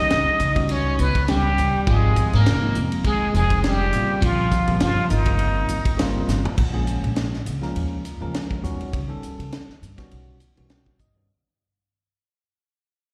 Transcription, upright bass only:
0.11 0.26 C#2 medium
0.27 muted upright bass stroke soft
0.40 0.95 C#2 medium
0.99 1.54 C#2 medium
1.58 1.73 C#2 medium
1.75 muted upright bass stroke soft
1.87 2.15 G#1 medium
2.34 2.46 G#2 medium
2.46 2.62 F1 medium
2.63 muted upright bass stroke soft
2.76 3.31 F1 medium
3.34 3.89 F1 medium
3.93 4.08 A#1 medium
4.09 muted upright bass stroke soft
4.22 4.50 A#1 medium
4.68 4.80 A#2 medium
4.81 4.96 G1 medium
4.98 muted upright bass stroke soft
5.11 5.66 G1 medium
5.70 6.25 G1 medium
6.28 6.43 G1 medium
6.45 muted upright bass stroke soft
6.58 7.01 A#1 medium
7.04 7.44 A#1 medium
7.47 7.62 C#2 medium
7.75 8.18 D#2 medium
8.21 8.34 C#2 medium
8.51 muted upright bass stroke soft
8.64 8.79 D#2 medium
8.80 muted upright bass stroke soft
8.93 9.09 C#3 medium
9.23 muted upright bass stroke soft
9.39 9.52 C#3 medium
9.69 muted upright bass stroke soft
9.82 9.97 G2 medium
10.12 10.39 B1 medium
10.58 10.98 B1 medium
10.99 11.27 G2 medium

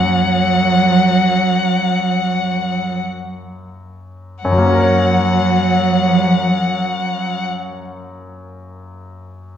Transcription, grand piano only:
0.00 4.39 F#2 soft
0.00 4.40 A#3 soft
0.00 4.40 C#4 soft
0.00 4.40 A#4 soft
4.45 7.45 F#2 soft
4.52 7.53 F#3 soft
4.58 7.59 A#3 soft
4.66 7.67 C#4 soft
4.73 7.74 A#4 soft
4.79 7.80 C#5 soft

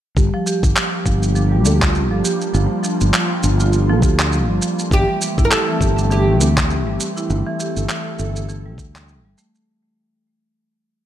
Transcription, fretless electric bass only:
0.17 0.28 G1 medium
0.63 0.72 G1 medium
1.06 1.66 G1 medium
1.66 2.12 D2 medium
2.12 2.21 G1 loud
2.54 2.66 G1 medium
3.01 3.10 G1 medium
3.44 4.02 G1 medium
4.02 4.49 D2 medium
4.49 4.58 G1 loud
4.91 5.03 G1 medium
5.38 5.47 G1 medium
5.80 6.40 G1 medium
6.40 6.88 D2 medium
6.88 6.96 G1 loud
7.30 7.41 G1 medium
7.77 7.85 G1 medium
8.19 8.78 G1 medium
8.78 9.25 D2 medium
9.25 9.34 G1 loud

